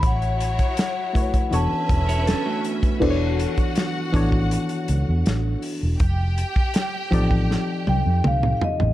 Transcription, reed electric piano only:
X:1
M:4/4
L:1/8
Q:1/4=80
K:Emix
V:1 name="Reed electric piano"
z3 [A,EFBc] [E,B,DFAc]3 z | [E,B,DFA=c^c]2 z [E,B,DFAc]3 z2 | z3 [=F,=C_E=GAd]3 z2 |]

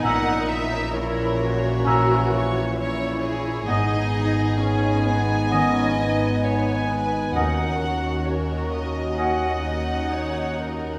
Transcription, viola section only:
X:1
M:4/4
L:1/8
Q:1/4=66
K:G#m
V:1 name="Viola section"
D2 E F3 E2 | D2 C B, C B,3 | D F3 F D3 |]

